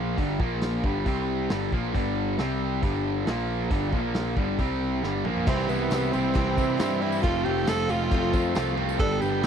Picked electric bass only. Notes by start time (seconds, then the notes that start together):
Already playing: A#1
0.18 G1
0.40 A#1
0.84 G1
1.06 C2
1.51 G1
1.73 A#1
1.94 G1
2.39 C2
2.83 G1
3.27 A#1
3.71 G1
3.93 A#1
4.37 G1
4.59 C2
5.03 G1
5.25 A#1
5.47 C2
5.69 C2
5.91 C2
6.14 C2
6.35 C2
6.57 C3
6.80 G2
7.24 F1
7.47 F1
7.68 F1
7.91 F1
8.11 F1
8.34 F2
8.56 C2
9.00 G1
9.23 G1